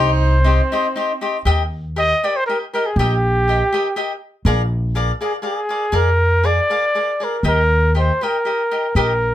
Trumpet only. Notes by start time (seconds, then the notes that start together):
Already playing: C5
1.99 D#5
2.25 D5
2.36 C5
2.47 A#4
2.74 A#4
2.86 G#4
2.98 G4
5.22 G#4
5.46 G#4
5.95 A#4
6.46 D5
7.24 A#4
7.47 A#4
7.99 C5
8.24 A#4
8.97 A#4